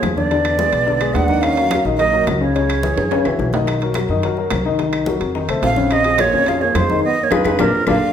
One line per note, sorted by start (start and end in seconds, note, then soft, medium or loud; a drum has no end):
0.00 0.67 E2 medium
0.00 0.12 F3 medium
0.00 0.12 F4 medium
0.00 0.12 G#4 medium
0.00 high bongo soft
0.00 low bongo medium
0.00 high conga medium
0.00 high timbale medium
0.00 low timbale medium
0.00 claves medium
0.15 0.28 D3 medium
0.15 1.15 B3 medium
0.15 0.28 D4 medium
0.15 1.15 D5 medium
0.15 0.29 D5 medium
0.15 high bongo soft
0.15 high conga medium
0.31 0.54 D3 medium
0.31 0.54 D4 medium
0.31 0.54 D5 medium
0.31 high bongo medium
0.31 high conga soft
0.31 high timbale medium
0.45 high bongo soft
0.45 high conga soft
0.45 high timbale medium
0.45 claves medium
0.58 0.81 G#3 medium
0.58 0.82 G#4 medium
0.58 0.82 B4 medium
0.58 high bongo soft
0.58 high conga medium
0.58 low timbale medium
0.73 1.12 B1 medium
0.73 high bongo soft
0.73 high conga soft
0.73 high timbale medium
0.87 0.98 D3 medium
0.87 0.98 D4 medium
0.87 0.98 D5 medium
0.87 high bongo medium
0.87 high conga soft
1.00 1.24 G#3 medium
1.00 1.24 G#4 medium
1.00 1.24 B4 medium
1.00 high conga soft
1.00 high timbale medium
1.00 claves medium
1.14 1.79 D#2 medium
1.14 1.43 D4 medium
1.14 1.43 F#5 medium
1.14 high bongo soft
1.14 low bongo medium
1.14 high conga soft
1.14 high timbale medium
1.14 low timbale medium
1.28 1.52 D#3 medium
1.28 1.52 D#4 medium
1.28 1.52 D#5 medium
1.28 high bongo soft
1.28 high conga medium
1.42 1.85 C#4 loud
1.42 1.84 F5 loud
1.42 high bongo medium
1.42 high conga soft
1.42 high timbale medium
1.42 claves medium
1.57 1.69 F#3 medium
1.57 1.69 F#4 medium
1.57 1.69 A#4 medium
1.57 high bongo soft
1.57 high conga soft
1.57 high timbale medium
1.71 1.83 F#3 medium
1.71 1.83 F#4 medium
1.71 1.83 A#4 medium
1.71 high bongo medium
1.71 high conga medium
1.71 high timbale medium
1.71 low timbale medium
1.71 claves medium
1.85 2.24 A#1 medium
1.85 1.97 D#3 medium
1.85 1.97 D#4 medium
1.85 1.97 D#5 medium
1.85 high bongo soft
1.85 high conga soft
1.98 2.10 F#3 medium
1.98 2.24 A#3 medium
1.98 2.10 F#4 medium
1.98 2.10 A#4 medium
1.98 2.24 D#5 medium
1.98 high bongo medium
1.98 high conga soft
1.98 high timbale medium
2.13 2.36 F#3 medium
2.13 2.36 F#4 medium
2.13 2.36 A#4 medium
2.13 high conga soft
2.27 2.91 C#2 medium
2.27 high bongo soft
2.27 low bongo medium
2.27 high conga medium
2.27 high timbale medium
2.27 low timbale medium
2.27 claves medium
2.40 2.52 C#3 medium
2.40 3.49 G#3 medium
2.40 2.53 C#4 medium
2.40 3.49 C#5 medium
2.40 2.53 C#5 medium
2.40 high bongo soft
2.55 2.78 C#3 medium
2.55 2.78 C#4 medium
2.55 2.78 C#5 medium
2.55 high bongo medium
2.55 high conga soft
2.55 high timbale medium
2.69 high bongo soft
2.69 high conga soft
2.69 high timbale medium
2.69 claves medium
2.83 3.06 E3 medium
2.83 3.06 E4 medium
2.83 3.07 G#4 medium
2.83 high bongo soft
2.83 high conga medium
2.83 low timbale soft
2.97 3.23 F#2 medium
2.97 high bongo soft
2.97 high conga soft
2.97 high timbale medium
3.11 3.23 C#3 medium
3.11 3.23 C#4 medium
3.11 3.23 C#5 medium
3.11 high bongo medium
3.11 high conga soft
3.11 high timbale medium
3.25 3.38 C2 medium
3.25 3.48 E3 medium
3.25 3.49 E4 medium
3.25 3.49 F#4 medium
3.25 high conga soft
3.25 high timbale medium
3.25 claves medium
3.39 4.03 B1 medium
3.39 high bongo soft
3.39 low bongo medium
3.39 high conga soft
3.53 3.76 D#3 medium
3.53 3.77 D#4 medium
3.53 3.77 D#5 medium
3.53 high bongo soft
3.53 high conga medium
3.53 low timbale loud
3.67 high bongo medium
3.67 high conga soft
3.67 high timbale medium
3.67 claves medium
3.81 3.93 F#3 medium
3.81 3.93 F#4 medium
3.81 3.94 A#4 medium
3.81 high bongo soft
3.81 high conga soft
3.81 high timbale medium
3.94 4.07 F#3 medium
3.94 4.07 F#4 medium
3.94 4.07 A#4 medium
3.94 high bongo medium
3.94 high conga medium
3.94 high timbale medium
3.94 low timbale medium
3.94 claves medium
4.08 4.48 F#2 medium
4.08 4.21 D#3 medium
4.08 4.21 D#4 medium
4.08 4.21 D#5 medium
4.08 high bongo soft
4.08 high conga soft
4.22 4.35 F#3 medium
4.22 4.35 F#4 medium
4.22 4.36 A#4 medium
4.22 high bongo medium
4.22 high conga soft
4.22 high timbale medium
4.37 4.61 F#3 medium
4.37 4.61 F#4 medium
4.37 4.61 A#4 medium
4.37 high conga soft
4.50 5.16 C2 medium
4.50 high bongo soft
4.50 low bongo medium
4.50 high conga medium
4.50 high timbale medium
4.50 low timbale medium
4.50 claves medium
4.66 4.77 D#3 medium
4.66 4.77 D#4 medium
4.66 4.77 D#5 medium
4.66 high bongo soft
4.79 5.02 D#3 medium
4.79 5.03 D#4 medium
4.79 5.03 D#5 medium
4.79 high bongo medium
4.79 high conga soft
4.79 high timbale medium
4.93 high bongo soft
4.93 high conga soft
4.93 high timbale medium
4.93 claves medium
5.06 5.30 F#3 medium
5.06 5.30 F#4 medium
5.06 5.31 A#4 medium
5.06 high bongo medium
5.06 high conga medium
5.06 low timbale medium
5.20 5.47 F2 medium
5.20 high bongo soft
5.20 high conga soft
5.20 high timbale medium
5.35 5.46 D#3 medium
5.35 5.47 D#4 medium
5.35 5.47 D#5 medium
5.35 high bongo medium
5.35 high conga soft
5.48 5.62 C2 medium
5.48 5.72 A3 medium
5.48 5.72 A4 medium
5.48 5.73 C5 medium
5.48 high conga soft
5.48 high timbale medium
5.48 claves medium
5.62 6.27 A#1 medium
5.62 5.92 C4 medium
5.62 5.94 F5 loud
5.62 high bongo soft
5.62 low bongo medium
5.62 high conga soft
5.62 high timbale medium
5.62 low timbale medium
5.76 6.00 C#3 medium
5.76 6.00 C#4 medium
5.76 6.00 C#5 medium
5.76 high bongo soft
5.76 high conga medium
5.90 6.22 C4 medium
5.90 6.22 D#5 loud
5.90 high bongo medium
5.90 high conga soft
5.90 high timbale medium
5.90 claves medium
6.04 6.17 F3 medium
6.04 6.17 F4 medium
6.04 6.17 G#4 medium
6.04 high bongo soft
6.04 high conga soft
6.04 high timbale medium
6.18 6.30 F3 medium
6.18 6.50 A#3 medium
6.18 6.30 F4 medium
6.18 6.31 G#4 medium
6.18 6.50 C#5 medium
6.18 high bongo medium
6.18 high conga medium
6.18 high timbale medium
6.18 low timbale medium
6.18 claves medium
6.33 6.72 F2 medium
6.33 6.45 C#3 medium
6.33 6.45 C#4 medium
6.33 6.45 C#5 medium
6.33 high bongo soft
6.33 high conga soft
6.46 6.59 F3 medium
6.46 6.64 C#4 medium
6.46 6.59 F4 medium
6.46 6.59 G#4 medium
6.46 6.63 F5 medium
6.46 high bongo medium
6.46 high conga soft
6.46 high timbale medium
6.61 6.84 F3 medium
6.61 6.78 A#3 medium
6.61 6.84 F4 medium
6.61 6.84 G#4 medium
6.61 6.78 C#5 medium
6.61 high conga soft
6.75 7.01 F2 medium
6.75 7.04 G#3 medium
6.75 7.03 C5 medium
6.75 high bongo soft
6.75 low bongo medium
6.75 high conga medium
6.75 high timbale medium
6.75 low timbale medium
6.75 claves medium
6.90 7.01 D#3 medium
6.90 7.01 D#4 medium
6.90 7.02 D#5 medium
6.90 high bongo soft
6.90 high conga medium
7.04 7.24 B3 medium
7.04 7.25 D#5 loud
7.23 7.33 A#3 medium
7.23 7.34 C#5 medium
7.31 7.41 F2 medium
7.31 7.61 G#3 medium
7.31 7.40 D#4 medium
7.31 7.40 F4 loud
7.31 7.40 G#4 loud
7.31 7.62 B4 medium
7.31 high bongo medium
7.31 high conga loud
7.31 high timbale medium
7.31 claves loud
7.45 7.55 F2 medium
7.45 7.54 D#4 medium
7.45 7.54 F4 medium
7.45 7.54 G#4 medium
7.45 high bongo loud
7.45 high conga loud
7.45 high timbale medium
7.45 claves medium
7.59 7.70 A#1 medium
7.59 7.87 F3 medium
7.59 7.68 A#3 loud
7.59 7.68 D4 loud
7.59 7.68 F4 medium
7.59 7.87 A#4 medium
7.59 high bongo medium
7.59 high conga medium
7.59 high timbale loud
7.59 claves medium
7.87 7.97 A#1 medium
7.87 8.13 D3 medium
7.87 7.96 A#3 loud
7.87 7.96 D4 loud
7.87 7.96 F4 loud
7.87 8.13 F5 medium
7.87 high bongo medium
7.87 high conga medium
7.87 high timbale medium
7.87 claves medium